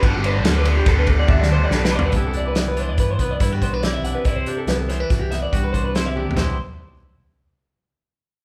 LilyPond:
<<
  \new Staff \with { instrumentName = "Clean electric guitar" } { \time 5/4 \key c \lydian \tempo 4 = 142 fis'16 g'16 b'16 c''16 a'16 b'16 a'16 g'16 a'16 b'16 a'16 d''16 e''16 d''16 c''16 d''16 a'16 b'16 d''16 b'16 | g'16 a'16 d''16 b'16 d''16 b'16 c''16 d''16 b'16 c''16 b'16 d''16 b'16 g'16 c''16 b'16 d''16 e''16 fis''16 b'16 | d''16 c''16 g'16 a'16 b'16 a'16 c''16 b'16 fis'16 g'16 e''16 d''16 g'16 b'16 c''16 b'16 c''16 e''16 g'16 g'16 | c''8 r1 r8 | }
  \new Staff \with { instrumentName = "Clean electric guitar" } { \time 5/4 \key c \lydian << { r1 r4 | <e b d' e'>8 d'8 b8 d'4 b8 e'16 fis'16 b16 d'16 e'8 d'8 | e'8 d'8 b8 b16 d'8. b8 fis'8 d'8 e'8 d'8 | <e b d' e'>8 r1 r8 | } \\ { r1 r4 | c4. e4. g,4 c4 | c4. e4. g,4 c4 | c8 r1 r8 | } >> }
  \new Staff \with { instrumentName = "Overdriven electric guitar" } { \time 5/4 \key c \lydian <g, d g b d'>8 <g b d'>8 <d g b d'>8 <g b d'>8 <g, d g b d'>4 <d g b d'>8 <g b d'>8 <g, d g b d'>8 <g b d'>8 | r1 r4 | r1 r4 | r1 r4 | }
  \new Staff \with { instrumentName = "Picked electric bass" } { \clef bass \time 5/4 \key c \lydian g,,4 d,4 d,4 d,4 b,,4 | c,2 g,8 c,8 g,8 b,,4 b,,16 r16 | c,8 r8 c,4 c,4 c,8 c,4. | c,8 r1 r8 | }
  \new DrumStaff \with { instrumentName = "Drums" } \drummode { \time 5/4 <bd cymr>8 cymr8 <cymr sn>8 cymr8 <bd cymr sn>8 <bd cymr>8 \tuplet 3/2 { <bd tommh>8 sn8 r8 sn8 sn8 tomfh8 } | <hh bd>8 hh8 <hh sn>8 hh8 <hh bd>8 <hh bd>8 <hh bd sn>8 <hh bd>8 <hh sn>8 hh8 | <hh bd>8 hh8 <hh sn>8 <hh sn>8 <hh bd sn>8 <hh sn>8 <hh bd>8 <hh bd>8 \tuplet 3/2 { <hh sn>16 r16 r16 tommh16 r16 tomfh16 } | <cymc sn tomfh>4 r4 r4 r4 r4 | }
>>